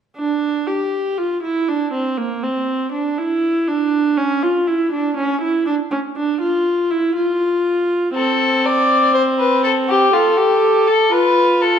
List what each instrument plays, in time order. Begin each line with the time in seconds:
0.17 viola D4
0.67 viola G4
1.18 viola F4
1.43 viola E4
1.68 viola D4
1.93 viola C4
2.17 viola A#3
2.43 viola C4
2.92 viola D4
3.18 viola E4
3.68 viola D4
4.17 viola C#4
4.43 viola F4
4.67 viola E4
4.92 viola D4
5.17 viola C#4
5.42 viola E4
5.66 viola D4
5.91 viola C#4
6.16 viola D4
6.41 viola F4
6.91 viola E4
7.16 viola F4
8.15 viola C4, violin A4
8.65 violin D5
9.14 violin C5
9.39 violin B4
9.64 violin A4
9.88 violin G4
10.13 violin F4, viola A4
10.37 violin G4
10.87 violin A4
11.12 viola F4, violin B4
11.61 violin A4